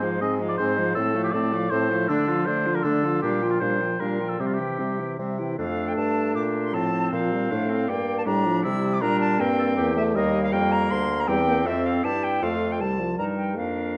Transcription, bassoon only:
0.00 0.17 G#2 medium
0.22 0.54 G#2 medium
0.59 0.92 G#2 medium
0.96 1.29 A2 loud
1.33 1.67 A2 medium
1.71 2.04 A2 loud
2.09 2.42 D3 loud
2.46 2.80 D3 medium
2.84 3.18 D3 medium
3.23 3.57 A#2 medium
3.61 3.96 A#2 medium
4.01 4.35 A#2 medium
4.40 4.75 C3 medium
4.79 5.14 C3 medium
5.19 5.54 C3 medium
5.58 5.94 F2 medium
5.97 6.36 G2 medium
6.35 6.73 A#2 medium
6.74 7.11 A2 medium
7.12 7.50 A#2 medium
7.51 7.88 A2 medium
7.89 8.26 G2 medium
8.26 8.63 A2 medium
8.65 9.04 C3 medium
9.02 9.39 A#2 loud
9.39 9.79 G2 loud
9.78 10.15 E2 loud
10.15 10.54 D#2 loud
10.53 10.90 F2 medium
10.90 11.27 D2 loud
11.28 11.67 E2 loud
11.65 12.03 F2 medium
12.04 12.41 G2 medium
12.42 12.82 F2 medium
12.81 13.18 C2 medium
13.19 13.59 G2 medium
13.58 13.97 F2 medium

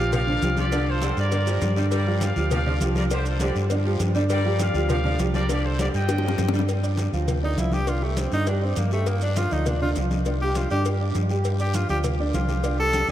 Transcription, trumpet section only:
0.00 0.12 D5 medium
0.00 0.11 F5 loud
0.14 0.55 D5 medium
0.14 0.55 F5 loud
0.59 0.86 G4 medium
0.59 0.86 D5 loud
0.89 1.18 A4 medium
0.89 1.18 C5 loud
1.19 1.74 A#4 medium
1.19 1.73 D5 loud
1.93 2.20 A#4 medium
1.93 2.20 D5 loud
2.23 2.52 D5 medium
2.23 2.51 F5 loud
2.52 2.80 D5 medium
2.52 2.79 F5 loud
2.97 3.04 A#4 medium
2.97 3.03 D5 medium
3.12 3.25 G4 medium
3.12 3.25 C5 medium
3.27 3.40 A4 medium
3.27 3.40 C5 medium
3.42 3.56 G4 medium
3.42 3.56 D5 medium
4.31 4.58 A#4 medium
4.31 4.58 D5 loud
4.62 4.88 D5 medium
4.62 4.88 F5 loud
4.91 5.18 D5 medium
4.91 5.18 F5 loud
5.35 5.49 A#4 medium
5.35 5.48 D5 loud
5.51 5.64 G4 medium
5.51 5.64 D5 loud
5.65 5.80 A4 medium
5.65 5.79 C5 medium
5.80 5.87 G4 medium
5.80 5.87 D5 loud
5.96 6.51 D#5 medium
5.96 6.50 G5 loud

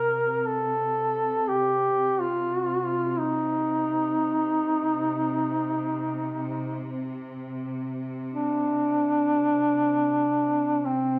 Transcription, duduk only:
0.00 0.41 A#4 medium
0.41 0.48 A#4 medium
0.47 1.50 A4 medium
1.48 2.22 G4 medium
2.21 3.20 F4 medium
3.19 7.08 D#4 medium
8.34 10.87 D4 loud
10.85 11.19 C4 medium

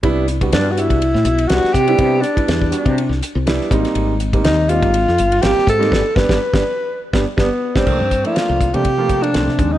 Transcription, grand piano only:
0.03 0.24 G3 medium
0.03 0.24 B3 medium
0.03 0.24 D4 medium
0.03 0.24 E4 loud
0.27 0.34 D4 soft
0.27 0.35 E4 soft
0.42 0.71 G3 medium
0.42 0.71 B3 medium
0.42 0.72 D4 medium
0.42 0.72 F#4 medium
0.77 0.97 G3 medium
0.77 0.98 B3 medium
0.77 0.98 D4 medium
0.77 0.98 F#4 medium
1.01 1.08 D4 soft
1.01 1.09 E4 soft
1.49 1.71 G3 medium
1.49 1.71 B3 medium
1.49 1.71 D4 medium
1.49 1.72 G4 medium
1.75 1.82 G4 soft
1.87 1.97 G3 medium
1.87 1.97 B3 medium
1.87 1.97 D4 medium
1.87 1.98 E4 loud
1.98 2.19 G3 medium
1.98 2.20 B3 medium
1.98 2.20 D4 medium
1.98 2.20 E4 medium
2.21 2.29 D4 soft
2.21 2.30 G4 soft
2.35 2.66 G3 medium
2.35 2.66 B3 medium
2.35 2.66 D4 medium
2.35 2.66 E4 medium
2.70 2.92 G3 medium
2.70 2.93 B3 medium
2.70 2.93 D4 medium
2.70 2.93 F#4 medium
2.97 3.04 D4 soft
2.97 3.05 E4 soft
3.46 3.67 G3 medium
3.46 3.67 B3 medium
3.46 3.68 D4 medium
3.46 3.68 E4 medium
3.71 4.12 G3 medium
3.71 4.12 A#3 medium
3.71 4.12 C4 medium
3.71 4.12 D#4 loud
4.19 4.26 C4 soft
4.19 4.27 D#4 soft
4.33 4.63 G3 medium
4.33 4.63 A#3 medium
4.33 4.63 C4 medium
4.33 4.64 D#4 medium
4.69 4.90 G3 medium
4.69 4.90 A#3 medium
4.69 4.90 C4 medium
4.69 4.90 D#4 medium
4.93 5.00 C4 soft
4.93 5.01 D4 soft
5.42 5.63 G3 medium
5.42 5.63 A#3 medium
5.42 5.63 C4 medium
5.42 5.63 F4 medium
5.66 5.73 C4 soft
5.66 5.74 D#4 soft
5.79 5.88 G3 medium
5.79 5.89 A#3 medium
5.79 5.89 C4 medium
5.79 5.89 D#4 loud
5.91 6.00 G3 medium
5.91 6.00 B3 medium
5.91 6.00 D4 medium
6.16 6.25 G3 medium
6.16 6.24 B3 medium
6.16 6.25 D4 medium
6.29 6.36 G3 medium
6.29 6.36 B3 medium
6.29 6.36 D4 medium
6.53 6.61 G3 medium
6.53 6.61 B3 medium
6.53 6.61 D4 medium
7.13 7.22 G3 medium
7.13 7.22 B3 medium
7.13 7.22 D4 medium
7.37 7.46 G3 loud
7.37 7.46 B3 medium
7.37 7.46 D4 medium
7.75 7.83 G3 medium
7.75 7.83 B3 medium
7.75 7.83 D4 medium
7.85 7.97 F3 medium
7.85 7.97 A3 medium
7.85 7.98 A#3 medium
7.85 7.98 D4 medium
7.99 8.05 A#3 soft
7.99 8.06 D4 soft
8.24 8.63 F3 medium
8.24 8.64 A3 medium
8.24 8.64 A#3 medium
8.24 8.64 D4 medium
8.73 8.83 F3 medium
8.73 8.83 A3 medium
8.73 8.82 A#3 medium
8.73 8.83 D4 medium
8.84 8.91 A#3 soft
8.84 8.92 C4 soft
8.98 9.28 F3 medium
8.98 9.28 A3 medium
8.98 9.28 A#3 medium
8.98 9.28 F4 medium
9.33 9.45 F3 medium
9.33 9.45 A3 medium
9.33 9.45 A#3 medium
9.33 9.45 C4 medium
9.47 9.53 A#3 soft
9.47 9.53 F4 soft
9.58 9.78 C#3 medium
9.58 9.78 F3 medium
9.58 9.78 G#3 medium
9.58 9.78 C4 medium

